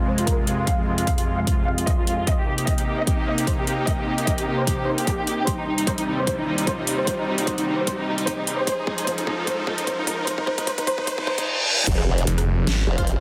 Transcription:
Already playing: F2 C3 G#3, riser
0.07 C5
0.18 F4, closed hi-hat
0.27 A#4, kick, closed hi-hat
0.38 F4
0.47 F4, closed hi-hat
0.58 F4
0.67 F5, kick, closed hi-hat
0.78 F4
0.87 F4
0.98 F4, closed hi-hat
1.07 F5, kick, closed hi-hat
1.18 F4, closed hi-hat
1.27 F4
1.38 F5
1.47 F4, kick, closed hi-hat
1.58 F4
1.67 F5
1.78 F4, closed hi-hat
1.87 D#5, kick, closed hi-hat
1.98 F4
2.07 F4, closed hi-hat
2.18 F4
2.27 C3 A#3 D#4 D#5, kick, closed hi-hat
2.38 G4
2.47 G4
2.58 G4, closed hi-hat
2.67 D#5, kick, closed hi-hat
2.78 G4, closed hi-hat
2.87 G4
2.98 D#5
3.07 G4, kick, closed hi-hat
3.18 G4
3.27 D#5
3.38 G4, closed hi-hat
3.47 C5, kick, closed hi-hat
3.58 G4
3.67 G4, closed hi-hat
3.78 G4
3.87 D#5, kick, closed hi-hat
3.98 G4
4.07 G4
4.18 G4, closed hi-hat
4.27 D#5, kick, closed hi-hat
4.38 G4, closed hi-hat
4.47 G4
4.58 C5
4.67 G4, kick, closed hi-hat
4.78 G4
4.87 C5
4.98 G4, closed hi-hat
5.07 G4, kick, closed hi-hat
5.18 G4
5.27 G4, closed hi-hat
5.38 G4
5.47 D#2 C3 G3 C5, kick, closed hi-hat
5.58 D#4
5.67 D#4
5.78 D#4, closed hi-hat
5.87 C5, kick, closed hi-hat
5.98 D#4, closed hi-hat
6.07 D#4
6.18 C5
6.27 C5, kick, closed hi-hat
6.38 D#4
6.47 D#4
6.58 D#4, closed hi-hat
6.67 C5, kick, closed hi-hat
6.78 D#4
6.87 D#4, open hi-hat
6.98 C5
7.07 C5, kick, closed hi-hat
7.18 D#4
7.27 D#4
7.38 D#4, closed hi-hat
7.47 C5, kick, closed hi-hat
7.58 D#4, closed hi-hat
7.67 D#4
7.78 C5
7.87 C5, kick, closed hi-hat
7.98 D#4
8.07 D#4
8.18 D#4, closed hi-hat
8.27 C5, kick, closed hi-hat
8.38 D#4
8.47 D#4, open hi-hat
8.58 C5
8.67 C#2 G#2 F3 C5, kick, closed hi-hat
8.78 D#4
8.87 D#4, kick
8.98 D#4, closed hi-hat
9.07 C5, kick, closed hi-hat
9.18 D#4, closed hi-hat
9.27 D#4, kick
9.38 D#4
9.47 C5, kick, closed hi-hat
9.58 D#4
9.67 D#4, kick
9.78 D#4, closed hi-hat
9.87 C5, kick, closed hi-hat
9.98 D#4
10.07 D#4, kick, open hi-hat
10.18 D#4
10.27 C5, kick, closed hi-hat
10.38 D#4, kick
10.47 C5, kick
10.58 D#4, kick, closed hi-hat
10.67 C5, kick, closed hi-hat
10.78 D#4, kick, closed hi-hat
10.87 C5, kick, open hi-hat
10.98 D#4, kick
11.07 C5, kick, closed hi-hat, reverse cymbal
11.18 D#4, kick
11.27 C5, kick
11.38 D#4, kick, closed hi-hat
11.87 F1, kick, closed hi-hat, crash, impact
11.98 cross-stick
12.18 closed hi-hat
12.27 F1, closed hi-hat
12.38 cross-stick, closed hi-hat
12.67 G#1, snare, closed hi-hat
12.87 F1
12.98 F4 C5 F5, kick, closed hi-hat
13.07 closed hi-hat

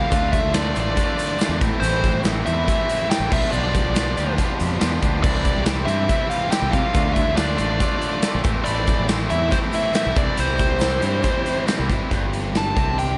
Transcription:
Already playing: C4 E4 F5
0.11 D2 D3 A3 D4 F4, kick, closed hi-hat, shaker
0.32 E5, kick, closed hi-hat, shaker
0.45 D2
0.52 D3 A3 D4 F4 D5, snare, closed hi-hat, tambourine, shaker
0.72 D3 A3 D4 F4, closed hi-hat, shaker
0.77 A1 D5
0.95 D3 A3 D4 F4, kick, closed hi-hat, shaker
1.18 closed hi-hat, shaker
1.38 D3 A3 D4 F4, snare, closed hi-hat, tambourine, shaker
1.49 E2
1.59 A1 A2 E3 A3 C4 E4, kick, closed hi-hat
1.80 A1 A2 E3 A3 C4 E4 C5, closed hi-hat, shaker
2.04 kick, closed hi-hat
2.14 A1
2.23 A2 E3 A3 C4 E4, snare, closed hi-hat, tambourine, shaker
2.45 E2 A2 E3 A3 C4 E4 E5, closed hi-hat, shaker
2.67 A2 E3 A3 C4 E4, kick, closed hi-hat, shaker
2.89 closed hi-hat, shaker
3.09 A2 E3 A3 C4 E4 G5, snare, closed hi-hat, tambourine, shaker
3.20 A1
3.30 B1 B2 F3 G3 B3 D4 F4 G4 E5, kick, crash, shaker
3.51 B1 B2 F3 G3 B3 D4 F4 G4 D5, shaker
3.74 kick, closed hi-hat, shaker
3.85 B1
3.94 B2 F3 G3 B3 D4 F4 G4, snare, closed hi-hat, tambourine, shaker
4.15 D2 B2 F3 G3 B3 D4 F4 G4, closed hi-hat, shaker
4.36 B2 F3 G3 B3 D4 F4 G4, kick, closed hi-hat, shaker
4.60 F2, closed hi-hat, shaker
4.78 E2 B2 F3 G3 B3 D4 F4 G4, snare, closed hi-hat, tambourine
4.82 shaker
5.00 D2 B2 F3 G3 B3 D4 F4 G4, kick, closed hi-hat, shaker
5.21 C2 C3 E3 G3 C4 D4 G4 D5, kick, crash, shaker
5.26 E4
5.45 kick, closed hi-hat, shaker
5.57 C2
5.63 C3 E3 G3 C4 E4 G4, snare, closed hi-hat, tambourine, shaker
5.85 G2 C3 E3 G3 C4 E4 G4 E5, closed hi-hat, shaker
5.89 E4
6.08 C3 E3 G3 C4 E4 G4, kick, closed hi-hat, shaker
6.29 F4 F5, closed hi-hat, shaker
6.49 C3 E3 G3 C4 E4 G4 G5, snare, closed hi-hat, tambourine, shaker
6.62 C2
6.71 C3 E3 G3 C4 E4 F4 G4 F5, kick, closed hi-hat, shaker
6.93 D2 D3 A3 D4 F4, kick, closed hi-hat, shaker
7.13 E4 E5, kick, closed hi-hat, shaker
7.28 D2
7.35 D3 A3 D4 F4 D5, snare, closed hi-hat, tambourine, shaker
7.55 D3 A3 D4 F4 D5, closed hi-hat
7.59 A1 D4, shaker
7.77 D3 A3 D4 F4, kick, closed hi-hat, shaker
8.02 closed hi-hat, shaker
8.22 D3 A3 D4 F4, snare, closed hi-hat, tambourine, shaker
8.35 A#1
8.43 A1 A2 E3 A3 C4 E4, kick, closed hi-hat, shaker
8.64 A1 A2 E3 A3 C4 D4 E4 D5, closed hi-hat, shaker
8.87 kick, closed hi-hat, shaker
8.99 A1
9.08 A2 E3 A3 C4 E4, snare, closed hi-hat, tambourine, shaker
9.30 E2 A2 E3 A3 C4 E4 E5, closed hi-hat, shaker
9.51 A2 E3 A3 C4 E4 C5, kick, closed hi-hat, shaker
9.72 E4 E5, closed hi-hat, shaker
9.94 A2 E3 A3 C4 E4, snare, closed hi-hat, tambourine, shaker
10.06 B1
10.16 C2 C3 E3 G3 C4 D4 E4 D5, kick, closed hi-hat, shaker
10.37 C2 C3 E3 G3 C4 E4 C5, closed hi-hat, shaker
10.58 kick, closed hi-hat, shaker
10.70 C2
10.79 C3 E3 G3 C4 E4, snare, closed hi-hat, tambourine, shaker
11.02 G2 C3 E3 G3 C4 E4, closed hi-hat, shaker
11.23 C3 E3 G3 C4 E4, kick, closed hi-hat, shaker
11.46 closed hi-hat, shaker
11.67 C3 E3 G3 C4 E4, snare, closed hi-hat, tambourine, shaker
11.79 C2
11.88 G#1 C3 E3 G3 C4 E4, kick, closed hi-hat
12.09 G1 G2 D3 G3 C4 D4, kick, closed hi-hat
12.33 closed hi-hat
12.55 A5, snare, closed hi-hat, tambourine
12.75 C2 G2 C3 D3 G3 C4 D4, kick, closed hi-hat
12.98 G5, closed hi-hat

